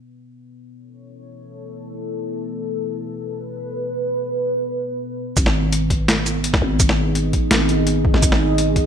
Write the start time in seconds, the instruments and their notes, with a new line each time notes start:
Already playing: ambient pad B3 E4 D#5
0.23 ambient pad A4
0.47 ambient pad C#5
2.73 ambient pad B4
5.37 808-style bass G#1, kick, closed hi-hat, shaker
5.46 snare
5.64 ambient pad D#4 G#4
5.72 closed hi-hat
5.78 ambient pad D#5
5.90 kick, closed hi-hat
6.08 snare, closed hi-hat
6.26 closed hi-hat, shaker
6.44 closed hi-hat
6.53 kick, snare
6.62 808-style bass G#1
6.80 kick, closed hi-hat, shaker
6.89 snare
7.15 closed hi-hat
7.33 808-style bass A1, kick, closed hi-hat
7.51 808-style bass G#1, snare, closed hi-hat
7.69 closed hi-hat
7.87 closed hi-hat
8.05 kick
8.14 808-style bass G#1, snare
8.23 808-style bass G#1, kick, closed hi-hat, shaker
8.32 snare
8.58 closed hi-hat
8.76 kick, closed hi-hat